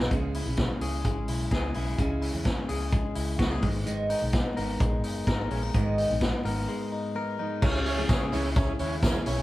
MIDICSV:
0, 0, Header, 1, 6, 480
1, 0, Start_track
1, 0, Tempo, 469484
1, 112, Time_signature, 4, 2, 24, 8
1, 9635, End_track
2, 0, Start_track
2, 0, Title_t, "Transistor combo organ"
2, 0, Program_c, 0, 18
2, 7794, Note_on_c, 0, 61, 105
2, 7794, Note_on_c, 0, 68, 92
2, 7797, Note_on_c, 0, 64, 94
2, 7799, Note_on_c, 0, 73, 110
2, 7965, Note_off_c, 0, 61, 0
2, 7965, Note_off_c, 0, 68, 0
2, 7966, Note_off_c, 0, 64, 0
2, 7967, Note_off_c, 0, 73, 0
2, 8034, Note_on_c, 0, 61, 97
2, 8036, Note_on_c, 0, 64, 85
2, 8036, Note_on_c, 0, 68, 91
2, 8039, Note_on_c, 0, 73, 112
2, 8205, Note_off_c, 0, 61, 0
2, 8206, Note_off_c, 0, 64, 0
2, 8206, Note_off_c, 0, 68, 0
2, 8207, Note_off_c, 0, 73, 0
2, 8273, Note_on_c, 0, 61, 85
2, 8273, Note_on_c, 0, 64, 74
2, 8275, Note_on_c, 0, 73, 91
2, 8276, Note_on_c, 0, 68, 71
2, 8444, Note_off_c, 0, 61, 0
2, 8444, Note_off_c, 0, 64, 0
2, 8445, Note_off_c, 0, 68, 0
2, 8445, Note_off_c, 0, 73, 0
2, 8517, Note_on_c, 0, 73, 95
2, 8518, Note_on_c, 0, 61, 82
2, 8518, Note_on_c, 0, 68, 79
2, 8519, Note_on_c, 0, 64, 78
2, 8686, Note_off_c, 0, 73, 0
2, 8687, Note_off_c, 0, 61, 0
2, 8687, Note_off_c, 0, 64, 0
2, 8687, Note_off_c, 0, 68, 0
2, 8755, Note_on_c, 0, 61, 86
2, 8757, Note_on_c, 0, 68, 78
2, 8758, Note_on_c, 0, 64, 76
2, 8758, Note_on_c, 0, 73, 95
2, 8925, Note_off_c, 0, 61, 0
2, 8926, Note_off_c, 0, 64, 0
2, 8926, Note_off_c, 0, 68, 0
2, 8926, Note_off_c, 0, 73, 0
2, 8994, Note_on_c, 0, 61, 87
2, 8995, Note_on_c, 0, 64, 77
2, 8996, Note_on_c, 0, 68, 79
2, 8996, Note_on_c, 0, 73, 97
2, 9164, Note_off_c, 0, 61, 0
2, 9165, Note_off_c, 0, 64, 0
2, 9165, Note_off_c, 0, 68, 0
2, 9165, Note_off_c, 0, 73, 0
2, 9230, Note_on_c, 0, 61, 101
2, 9231, Note_on_c, 0, 64, 96
2, 9232, Note_on_c, 0, 70, 108
2, 9234, Note_on_c, 0, 68, 100
2, 9402, Note_off_c, 0, 61, 0
2, 9403, Note_off_c, 0, 64, 0
2, 9403, Note_off_c, 0, 70, 0
2, 9404, Note_off_c, 0, 68, 0
2, 9471, Note_on_c, 0, 68, 82
2, 9472, Note_on_c, 0, 61, 89
2, 9472, Note_on_c, 0, 64, 80
2, 9475, Note_on_c, 0, 73, 98
2, 9635, Note_off_c, 0, 61, 0
2, 9635, Note_off_c, 0, 64, 0
2, 9635, Note_off_c, 0, 68, 0
2, 9635, Note_off_c, 0, 73, 0
2, 9635, End_track
3, 0, Start_track
3, 0, Title_t, "Clean electric guitar"
3, 0, Program_c, 1, 27
3, 0, Note_on_c, 1, 44, 87
3, 0, Note_on_c, 1, 59, 68
3, 0, Note_on_c, 1, 63, 63
3, 0, Note_on_c, 1, 70, 65
3, 114, Note_on_c, 1, 49, 74
3, 115, Note_off_c, 1, 44, 0
3, 162, Note_off_c, 1, 59, 0
3, 163, Note_off_c, 1, 63, 0
3, 165, Note_off_c, 1, 70, 0
3, 359, Note_on_c, 1, 64, 56
3, 593, Note_on_c, 1, 61, 55
3, 834, Note_on_c, 1, 68, 56
3, 1072, Note_on_c, 1, 56, 62
3, 1303, Note_off_c, 1, 64, 0
3, 1315, Note_on_c, 1, 64, 55
3, 1551, Note_off_c, 1, 68, 0
3, 1555, Note_on_c, 1, 68, 64
3, 1780, Note_off_c, 1, 64, 0
3, 1792, Note_on_c, 1, 64, 55
3, 2018, Note_off_c, 1, 49, 0
3, 2030, Note_on_c, 1, 49, 76
3, 2255, Note_off_c, 1, 64, 0
3, 2267, Note_on_c, 1, 64, 53
3, 2499, Note_off_c, 1, 61, 0
3, 2512, Note_on_c, 1, 61, 58
3, 2743, Note_off_c, 1, 68, 0
3, 2747, Note_on_c, 1, 68, 61
3, 2984, Note_off_c, 1, 56, 0
3, 2988, Note_on_c, 1, 56, 64
3, 3212, Note_off_c, 1, 64, 0
3, 3224, Note_on_c, 1, 64, 54
3, 3460, Note_off_c, 1, 68, 0
3, 3464, Note_on_c, 1, 66, 71
3, 3591, Note_off_c, 1, 66, 0
3, 3591, Note_on_c, 1, 68, 52
3, 3708, Note_on_c, 1, 44, 80
3, 3756, Note_off_c, 1, 64, 0
3, 3759, Note_off_c, 1, 49, 0
3, 3760, Note_off_c, 1, 61, 0
3, 3760, Note_off_c, 1, 68, 0
3, 3937, Note_off_c, 1, 44, 0
3, 3950, Note_on_c, 1, 44, 77
3, 4190, Note_on_c, 1, 63, 60
3, 4427, Note_on_c, 1, 59, 58
3, 4670, Note_on_c, 1, 70, 57
3, 4700, Note_off_c, 1, 56, 0
3, 4912, Note_on_c, 1, 56, 62
3, 5141, Note_off_c, 1, 63, 0
3, 5153, Note_on_c, 1, 63, 54
3, 5382, Note_off_c, 1, 70, 0
3, 5394, Note_on_c, 1, 70, 71
3, 5632, Note_off_c, 1, 63, 0
3, 5636, Note_on_c, 1, 61, 62
3, 5755, Note_off_c, 1, 61, 0
3, 5755, Note_on_c, 1, 63, 55
3, 5862, Note_off_c, 1, 44, 0
3, 5875, Note_on_c, 1, 44, 80
3, 6103, Note_off_c, 1, 63, 0
3, 6115, Note_on_c, 1, 63, 57
3, 6346, Note_off_c, 1, 59, 0
3, 6358, Note_on_c, 1, 59, 64
3, 6583, Note_off_c, 1, 70, 0
3, 6595, Note_on_c, 1, 70, 57
3, 6830, Note_off_c, 1, 56, 0
3, 6834, Note_on_c, 1, 56, 70
3, 7064, Note_off_c, 1, 63, 0
3, 7077, Note_on_c, 1, 63, 53
3, 7306, Note_off_c, 1, 70, 0
3, 7318, Note_on_c, 1, 70, 75
3, 7546, Note_off_c, 1, 63, 0
3, 7558, Note_on_c, 1, 63, 63
3, 7793, Note_off_c, 1, 44, 0
3, 7797, Note_on_c, 1, 49, 83
3, 7842, Note_off_c, 1, 59, 0
3, 7843, Note_off_c, 1, 63, 0
3, 7843, Note_off_c, 1, 70, 0
3, 8034, Note_on_c, 1, 61, 58
3, 8270, Note_on_c, 1, 68, 68
3, 8512, Note_on_c, 1, 64, 58
3, 8744, Note_off_c, 1, 61, 0
3, 8756, Note_on_c, 1, 61, 66
3, 8986, Note_off_c, 1, 64, 0
3, 8999, Note_on_c, 1, 64, 61
3, 9226, Note_off_c, 1, 61, 0
3, 9239, Note_on_c, 1, 61, 72
3, 9464, Note_off_c, 1, 64, 0
3, 9476, Note_on_c, 1, 64, 66
3, 9635, Note_off_c, 1, 49, 0
3, 9635, Note_off_c, 1, 56, 0
3, 9635, Note_off_c, 1, 61, 0
3, 9635, Note_off_c, 1, 64, 0
3, 9635, Note_off_c, 1, 68, 0
3, 9635, End_track
4, 0, Start_track
4, 0, Title_t, "Steel-string acoustic guitar"
4, 0, Program_c, 2, 25
4, 0, Note_on_c, 2, 56, 50
4, 0, Note_on_c, 2, 59, 55
4, 0, Note_on_c, 2, 63, 57
4, 0, Note_on_c, 2, 70, 56
4, 110, Note_off_c, 2, 56, 0
4, 115, Note_off_c, 2, 70, 0
4, 119, Note_on_c, 2, 49, 82
4, 120, Note_off_c, 2, 63, 0
4, 122, Note_on_c, 2, 56, 79
4, 123, Note_off_c, 2, 59, 0
4, 129, Note_on_c, 2, 61, 76
4, 133, Note_on_c, 2, 64, 75
4, 134, Note_on_c, 2, 68, 87
4, 460, Note_off_c, 2, 68, 0
4, 472, Note_on_c, 2, 68, 57
4, 473, Note_off_c, 2, 64, 0
4, 476, Note_off_c, 2, 49, 0
4, 477, Note_off_c, 2, 56, 0
4, 481, Note_off_c, 2, 61, 0
4, 485, Note_on_c, 2, 64, 51
4, 493, Note_on_c, 2, 61, 43
4, 825, Note_off_c, 2, 61, 0
4, 830, Note_on_c, 2, 56, 60
4, 831, Note_off_c, 2, 64, 0
4, 832, Note_off_c, 2, 68, 0
4, 838, Note_on_c, 2, 61, 61
4, 843, Note_on_c, 2, 64, 62
4, 850, Note_on_c, 2, 68, 69
4, 1545, Note_off_c, 2, 61, 0
4, 1546, Note_off_c, 2, 56, 0
4, 1548, Note_off_c, 2, 64, 0
4, 1550, Note_on_c, 2, 56, 59
4, 1557, Note_on_c, 2, 61, 64
4, 1560, Note_on_c, 2, 64, 63
4, 1565, Note_off_c, 2, 68, 0
4, 1569, Note_on_c, 2, 68, 67
4, 1779, Note_off_c, 2, 56, 0
4, 1788, Note_off_c, 2, 61, 0
4, 1791, Note_off_c, 2, 64, 0
4, 1792, Note_on_c, 2, 56, 61
4, 1801, Note_off_c, 2, 68, 0
4, 1801, Note_on_c, 2, 61, 59
4, 1803, Note_on_c, 2, 64, 64
4, 1813, Note_on_c, 2, 68, 61
4, 2020, Note_off_c, 2, 56, 0
4, 2028, Note_off_c, 2, 61, 0
4, 2030, Note_off_c, 2, 64, 0
4, 2033, Note_on_c, 2, 49, 73
4, 2033, Note_on_c, 2, 56, 72
4, 2034, Note_off_c, 2, 68, 0
4, 2041, Note_on_c, 2, 61, 87
4, 2043, Note_on_c, 2, 64, 79
4, 2046, Note_on_c, 2, 68, 82
4, 2379, Note_off_c, 2, 68, 0
4, 2387, Note_off_c, 2, 64, 0
4, 2391, Note_on_c, 2, 68, 59
4, 2393, Note_off_c, 2, 49, 0
4, 2393, Note_off_c, 2, 56, 0
4, 2397, Note_off_c, 2, 61, 0
4, 2399, Note_on_c, 2, 64, 56
4, 2413, Note_on_c, 2, 61, 48
4, 2745, Note_off_c, 2, 61, 0
4, 2750, Note_off_c, 2, 64, 0
4, 2750, Note_on_c, 2, 56, 58
4, 2752, Note_off_c, 2, 68, 0
4, 2757, Note_on_c, 2, 61, 61
4, 2762, Note_on_c, 2, 64, 68
4, 2770, Note_on_c, 2, 68, 68
4, 3455, Note_off_c, 2, 56, 0
4, 3459, Note_off_c, 2, 61, 0
4, 3459, Note_on_c, 2, 56, 59
4, 3463, Note_off_c, 2, 64, 0
4, 3472, Note_on_c, 2, 61, 58
4, 3476, Note_on_c, 2, 64, 65
4, 3477, Note_off_c, 2, 68, 0
4, 3481, Note_on_c, 2, 68, 65
4, 3685, Note_off_c, 2, 56, 0
4, 3697, Note_on_c, 2, 56, 66
4, 3704, Note_off_c, 2, 61, 0
4, 3708, Note_on_c, 2, 59, 56
4, 3709, Note_off_c, 2, 64, 0
4, 3713, Note_on_c, 2, 63, 65
4, 3717, Note_off_c, 2, 68, 0
4, 3722, Note_on_c, 2, 70, 58
4, 3939, Note_off_c, 2, 56, 0
4, 3940, Note_off_c, 2, 59, 0
4, 3944, Note_off_c, 2, 63, 0
4, 3944, Note_on_c, 2, 44, 76
4, 3946, Note_on_c, 2, 51, 89
4, 3947, Note_off_c, 2, 70, 0
4, 3952, Note_on_c, 2, 56, 90
4, 3953, Note_on_c, 2, 59, 78
4, 3956, Note_on_c, 2, 63, 86
4, 3959, Note_on_c, 2, 70, 90
4, 4294, Note_off_c, 2, 70, 0
4, 4301, Note_off_c, 2, 63, 0
4, 4307, Note_on_c, 2, 70, 54
4, 4308, Note_off_c, 2, 44, 0
4, 4309, Note_off_c, 2, 51, 0
4, 4309, Note_off_c, 2, 59, 0
4, 4312, Note_off_c, 2, 56, 0
4, 4313, Note_on_c, 2, 63, 48
4, 4321, Note_on_c, 2, 59, 47
4, 4325, Note_on_c, 2, 56, 44
4, 4655, Note_off_c, 2, 56, 0
4, 4663, Note_off_c, 2, 59, 0
4, 4667, Note_on_c, 2, 56, 59
4, 4669, Note_off_c, 2, 63, 0
4, 4670, Note_off_c, 2, 70, 0
4, 4676, Note_on_c, 2, 59, 60
4, 4681, Note_on_c, 2, 63, 68
4, 4688, Note_on_c, 2, 70, 72
4, 5382, Note_off_c, 2, 56, 0
4, 5383, Note_off_c, 2, 59, 0
4, 5386, Note_on_c, 2, 56, 59
4, 5390, Note_off_c, 2, 63, 0
4, 5393, Note_off_c, 2, 70, 0
4, 5396, Note_on_c, 2, 59, 63
4, 5402, Note_on_c, 2, 63, 73
4, 5405, Note_on_c, 2, 70, 67
4, 5618, Note_off_c, 2, 56, 0
4, 5624, Note_off_c, 2, 59, 0
4, 5630, Note_on_c, 2, 56, 59
4, 5633, Note_off_c, 2, 63, 0
4, 5636, Note_on_c, 2, 59, 63
4, 5639, Note_off_c, 2, 70, 0
4, 5645, Note_on_c, 2, 63, 62
4, 5651, Note_on_c, 2, 70, 72
4, 5866, Note_off_c, 2, 56, 0
4, 5868, Note_on_c, 2, 44, 85
4, 5869, Note_off_c, 2, 59, 0
4, 5870, Note_off_c, 2, 63, 0
4, 5874, Note_off_c, 2, 70, 0
4, 5877, Note_on_c, 2, 51, 90
4, 5878, Note_on_c, 2, 56, 88
4, 5881, Note_on_c, 2, 59, 83
4, 5882, Note_on_c, 2, 63, 86
4, 5886, Note_on_c, 2, 70, 88
4, 6221, Note_off_c, 2, 70, 0
4, 6230, Note_off_c, 2, 44, 0
4, 6230, Note_off_c, 2, 63, 0
4, 6233, Note_on_c, 2, 70, 56
4, 6235, Note_off_c, 2, 51, 0
4, 6235, Note_off_c, 2, 56, 0
4, 6237, Note_off_c, 2, 59, 0
4, 6242, Note_on_c, 2, 63, 58
4, 6249, Note_on_c, 2, 59, 56
4, 6254, Note_on_c, 2, 56, 46
4, 6574, Note_off_c, 2, 56, 0
4, 6583, Note_off_c, 2, 59, 0
4, 6586, Note_on_c, 2, 56, 61
4, 6590, Note_off_c, 2, 63, 0
4, 6593, Note_off_c, 2, 70, 0
4, 6595, Note_on_c, 2, 59, 63
4, 6602, Note_on_c, 2, 63, 73
4, 6608, Note_on_c, 2, 70, 76
4, 7298, Note_off_c, 2, 59, 0
4, 7300, Note_off_c, 2, 56, 0
4, 7304, Note_on_c, 2, 56, 59
4, 7306, Note_off_c, 2, 63, 0
4, 7310, Note_on_c, 2, 59, 70
4, 7312, Note_off_c, 2, 70, 0
4, 7318, Note_on_c, 2, 63, 61
4, 7324, Note_on_c, 2, 70, 75
4, 7530, Note_off_c, 2, 56, 0
4, 7541, Note_off_c, 2, 59, 0
4, 7543, Note_on_c, 2, 56, 66
4, 7547, Note_off_c, 2, 63, 0
4, 7552, Note_off_c, 2, 70, 0
4, 7554, Note_on_c, 2, 59, 63
4, 7559, Note_on_c, 2, 63, 68
4, 7564, Note_on_c, 2, 70, 67
4, 7777, Note_off_c, 2, 56, 0
4, 7789, Note_on_c, 2, 56, 62
4, 7792, Note_off_c, 2, 59, 0
4, 7795, Note_off_c, 2, 63, 0
4, 7796, Note_on_c, 2, 61, 65
4, 7798, Note_off_c, 2, 70, 0
4, 7803, Note_on_c, 2, 64, 63
4, 7810, Note_on_c, 2, 68, 77
4, 8139, Note_off_c, 2, 68, 0
4, 8143, Note_off_c, 2, 64, 0
4, 8144, Note_off_c, 2, 61, 0
4, 8150, Note_off_c, 2, 56, 0
4, 8152, Note_on_c, 2, 68, 90
4, 8155, Note_on_c, 2, 64, 70
4, 8156, Note_on_c, 2, 61, 72
4, 8161, Note_on_c, 2, 56, 64
4, 8165, Note_on_c, 2, 49, 70
4, 8493, Note_off_c, 2, 49, 0
4, 8498, Note_off_c, 2, 56, 0
4, 8505, Note_off_c, 2, 61, 0
4, 8505, Note_off_c, 2, 64, 0
4, 8505, Note_on_c, 2, 49, 97
4, 8511, Note_off_c, 2, 68, 0
4, 8511, Note_on_c, 2, 56, 86
4, 8517, Note_on_c, 2, 61, 89
4, 8517, Note_on_c, 2, 64, 104
4, 8523, Note_on_c, 2, 68, 86
4, 8854, Note_off_c, 2, 68, 0
4, 8865, Note_off_c, 2, 64, 0
4, 8866, Note_on_c, 2, 68, 64
4, 8868, Note_off_c, 2, 49, 0
4, 8870, Note_off_c, 2, 56, 0
4, 8874, Note_off_c, 2, 61, 0
4, 8877, Note_on_c, 2, 64, 54
4, 8886, Note_on_c, 2, 61, 49
4, 9339, Note_off_c, 2, 68, 0
4, 9343, Note_on_c, 2, 68, 59
4, 9344, Note_off_c, 2, 64, 0
4, 9352, Note_off_c, 2, 61, 0
4, 9356, Note_on_c, 2, 64, 57
4, 9365, Note_on_c, 2, 61, 51
4, 9635, Note_off_c, 2, 61, 0
4, 9635, Note_off_c, 2, 64, 0
4, 9635, Note_off_c, 2, 68, 0
4, 9635, End_track
5, 0, Start_track
5, 0, Title_t, "Fingered electric bass"
5, 0, Program_c, 3, 33
5, 113, Note_on_c, 3, 37, 94
5, 419, Note_off_c, 3, 37, 0
5, 468, Note_on_c, 3, 35, 80
5, 674, Note_off_c, 3, 35, 0
5, 823, Note_on_c, 3, 37, 89
5, 1031, Note_off_c, 3, 37, 0
5, 1070, Note_on_c, 3, 32, 81
5, 1275, Note_off_c, 3, 32, 0
5, 1303, Note_on_c, 3, 35, 72
5, 1511, Note_off_c, 3, 35, 0
5, 1547, Note_on_c, 3, 37, 93
5, 1754, Note_off_c, 3, 37, 0
5, 1791, Note_on_c, 3, 35, 81
5, 1996, Note_off_c, 3, 35, 0
5, 2028, Note_on_c, 3, 37, 98
5, 2336, Note_off_c, 3, 37, 0
5, 2387, Note_on_c, 3, 40, 79
5, 2594, Note_off_c, 3, 40, 0
5, 2752, Note_on_c, 3, 37, 87
5, 3058, Note_off_c, 3, 37, 0
5, 3229, Note_on_c, 3, 37, 89
5, 3435, Note_off_c, 3, 37, 0
5, 3466, Note_on_c, 3, 37, 88
5, 3707, Note_on_c, 3, 32, 92
5, 3722, Note_off_c, 3, 37, 0
5, 4219, Note_off_c, 3, 32, 0
5, 4314, Note_on_c, 3, 35, 80
5, 4517, Note_off_c, 3, 35, 0
5, 4672, Note_on_c, 3, 32, 86
5, 4876, Note_off_c, 3, 32, 0
5, 4910, Note_on_c, 3, 34, 95
5, 5155, Note_off_c, 3, 34, 0
5, 5155, Note_on_c, 3, 30, 87
5, 5358, Note_off_c, 3, 30, 0
5, 5386, Note_on_c, 3, 32, 92
5, 5593, Note_off_c, 3, 32, 0
5, 5634, Note_on_c, 3, 34, 87
5, 5837, Note_off_c, 3, 34, 0
5, 5871, Note_on_c, 3, 32, 104
5, 6177, Note_off_c, 3, 32, 0
5, 6234, Note_on_c, 3, 34, 89
5, 6437, Note_off_c, 3, 34, 0
5, 6592, Note_on_c, 3, 32, 85
5, 6796, Note_off_c, 3, 32, 0
5, 7795, Note_on_c, 3, 37, 98
5, 8201, Note_off_c, 3, 37, 0
5, 8272, Note_on_c, 3, 49, 95
5, 8476, Note_off_c, 3, 49, 0
5, 8514, Note_on_c, 3, 37, 91
5, 8920, Note_off_c, 3, 37, 0
5, 8992, Note_on_c, 3, 39, 93
5, 9399, Note_off_c, 3, 39, 0
5, 9473, Note_on_c, 3, 35, 94
5, 9635, Note_off_c, 3, 35, 0
5, 9635, End_track
6, 0, Start_track
6, 0, Title_t, "Drums"
6, 0, Note_on_c, 9, 38, 97
6, 100, Note_off_c, 9, 38, 0
6, 113, Note_on_c, 9, 42, 53
6, 114, Note_on_c, 9, 36, 100
6, 215, Note_off_c, 9, 42, 0
6, 216, Note_off_c, 9, 36, 0
6, 352, Note_on_c, 9, 46, 64
6, 454, Note_off_c, 9, 46, 0
6, 583, Note_on_c, 9, 42, 75
6, 591, Note_on_c, 9, 36, 100
6, 593, Note_on_c, 9, 38, 93
6, 686, Note_off_c, 9, 42, 0
6, 693, Note_off_c, 9, 36, 0
6, 695, Note_off_c, 9, 38, 0
6, 829, Note_on_c, 9, 46, 68
6, 932, Note_off_c, 9, 46, 0
6, 1071, Note_on_c, 9, 36, 102
6, 1071, Note_on_c, 9, 42, 78
6, 1173, Note_off_c, 9, 36, 0
6, 1173, Note_off_c, 9, 42, 0
6, 1306, Note_on_c, 9, 46, 64
6, 1409, Note_off_c, 9, 46, 0
6, 1546, Note_on_c, 9, 36, 91
6, 1547, Note_on_c, 9, 42, 69
6, 1556, Note_on_c, 9, 38, 94
6, 1648, Note_off_c, 9, 36, 0
6, 1649, Note_off_c, 9, 42, 0
6, 1658, Note_off_c, 9, 38, 0
6, 1781, Note_on_c, 9, 46, 73
6, 1883, Note_off_c, 9, 46, 0
6, 2028, Note_on_c, 9, 42, 52
6, 2030, Note_on_c, 9, 36, 94
6, 2131, Note_off_c, 9, 42, 0
6, 2132, Note_off_c, 9, 36, 0
6, 2271, Note_on_c, 9, 46, 70
6, 2373, Note_off_c, 9, 46, 0
6, 2503, Note_on_c, 9, 42, 72
6, 2509, Note_on_c, 9, 36, 102
6, 2513, Note_on_c, 9, 38, 92
6, 2605, Note_off_c, 9, 42, 0
6, 2611, Note_off_c, 9, 36, 0
6, 2615, Note_off_c, 9, 38, 0
6, 2749, Note_on_c, 9, 46, 67
6, 2851, Note_off_c, 9, 46, 0
6, 2990, Note_on_c, 9, 36, 109
6, 2992, Note_on_c, 9, 42, 74
6, 3093, Note_off_c, 9, 36, 0
6, 3094, Note_off_c, 9, 42, 0
6, 3222, Note_on_c, 9, 46, 68
6, 3324, Note_off_c, 9, 46, 0
6, 3467, Note_on_c, 9, 36, 93
6, 3468, Note_on_c, 9, 42, 66
6, 3477, Note_on_c, 9, 38, 105
6, 3569, Note_off_c, 9, 36, 0
6, 3570, Note_off_c, 9, 42, 0
6, 3580, Note_off_c, 9, 38, 0
6, 3703, Note_on_c, 9, 46, 73
6, 3710, Note_on_c, 9, 36, 100
6, 3805, Note_off_c, 9, 46, 0
6, 3812, Note_off_c, 9, 36, 0
6, 3952, Note_on_c, 9, 42, 55
6, 4054, Note_off_c, 9, 42, 0
6, 4190, Note_on_c, 9, 46, 69
6, 4292, Note_off_c, 9, 46, 0
6, 4424, Note_on_c, 9, 42, 75
6, 4430, Note_on_c, 9, 36, 105
6, 4433, Note_on_c, 9, 38, 97
6, 4526, Note_off_c, 9, 42, 0
6, 4532, Note_off_c, 9, 36, 0
6, 4536, Note_off_c, 9, 38, 0
6, 4672, Note_on_c, 9, 46, 70
6, 4774, Note_off_c, 9, 46, 0
6, 4910, Note_on_c, 9, 42, 76
6, 4911, Note_on_c, 9, 36, 118
6, 5012, Note_off_c, 9, 42, 0
6, 5013, Note_off_c, 9, 36, 0
6, 5148, Note_on_c, 9, 46, 65
6, 5250, Note_off_c, 9, 46, 0
6, 5389, Note_on_c, 9, 36, 99
6, 5390, Note_on_c, 9, 42, 70
6, 5399, Note_on_c, 9, 38, 97
6, 5491, Note_off_c, 9, 36, 0
6, 5493, Note_off_c, 9, 42, 0
6, 5502, Note_off_c, 9, 38, 0
6, 5628, Note_on_c, 9, 46, 70
6, 5730, Note_off_c, 9, 46, 0
6, 5872, Note_on_c, 9, 42, 56
6, 5873, Note_on_c, 9, 36, 106
6, 5975, Note_off_c, 9, 36, 0
6, 5975, Note_off_c, 9, 42, 0
6, 6113, Note_on_c, 9, 46, 73
6, 6215, Note_off_c, 9, 46, 0
6, 6348, Note_on_c, 9, 42, 76
6, 6352, Note_on_c, 9, 36, 95
6, 6358, Note_on_c, 9, 38, 100
6, 6450, Note_off_c, 9, 42, 0
6, 6454, Note_off_c, 9, 36, 0
6, 6460, Note_off_c, 9, 38, 0
6, 6596, Note_on_c, 9, 46, 70
6, 6698, Note_off_c, 9, 46, 0
6, 7794, Note_on_c, 9, 36, 110
6, 7794, Note_on_c, 9, 49, 97
6, 7805, Note_on_c, 9, 54, 34
6, 7896, Note_off_c, 9, 36, 0
6, 7896, Note_off_c, 9, 49, 0
6, 7908, Note_off_c, 9, 54, 0
6, 8034, Note_on_c, 9, 46, 74
6, 8034, Note_on_c, 9, 54, 33
6, 8136, Note_off_c, 9, 46, 0
6, 8136, Note_off_c, 9, 54, 0
6, 8272, Note_on_c, 9, 54, 91
6, 8273, Note_on_c, 9, 42, 73
6, 8274, Note_on_c, 9, 36, 114
6, 8282, Note_on_c, 9, 38, 104
6, 8374, Note_off_c, 9, 54, 0
6, 8375, Note_off_c, 9, 42, 0
6, 8376, Note_off_c, 9, 36, 0
6, 8385, Note_off_c, 9, 38, 0
6, 8515, Note_on_c, 9, 54, 50
6, 8518, Note_on_c, 9, 46, 78
6, 8617, Note_off_c, 9, 54, 0
6, 8621, Note_off_c, 9, 46, 0
6, 8753, Note_on_c, 9, 36, 126
6, 8753, Note_on_c, 9, 42, 85
6, 8765, Note_on_c, 9, 54, 51
6, 8856, Note_off_c, 9, 36, 0
6, 8856, Note_off_c, 9, 42, 0
6, 8868, Note_off_c, 9, 54, 0
6, 8987, Note_on_c, 9, 46, 70
6, 8990, Note_on_c, 9, 54, 52
6, 9089, Note_off_c, 9, 46, 0
6, 9092, Note_off_c, 9, 54, 0
6, 9228, Note_on_c, 9, 36, 107
6, 9229, Note_on_c, 9, 42, 75
6, 9239, Note_on_c, 9, 38, 104
6, 9241, Note_on_c, 9, 54, 98
6, 9331, Note_off_c, 9, 36, 0
6, 9332, Note_off_c, 9, 42, 0
6, 9341, Note_off_c, 9, 38, 0
6, 9344, Note_off_c, 9, 54, 0
6, 9465, Note_on_c, 9, 46, 75
6, 9480, Note_on_c, 9, 54, 59
6, 9568, Note_off_c, 9, 46, 0
6, 9582, Note_off_c, 9, 54, 0
6, 9635, End_track
0, 0, End_of_file